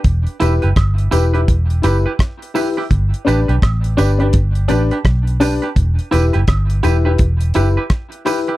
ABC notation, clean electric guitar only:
X:1
M:4/4
L:1/16
Q:"Swing 16ths" 1/4=84
K:Em
V:1 name="Clean electric guitar"
z2 [EGB] [EGB] z2 [EGB] [EGB] z2 [EGB] [EGB] z2 [EGB] [EGB] | z2 [DGB] [DGB] z2 [DGB] [DGB] z2 [DGB] [DGB] z2 [DGB] [DGB] | z2 [EGB] [EGB] z2 [EGB] [EGB] z2 [EGB] [EGB] z2 [EGB] [EGB] |]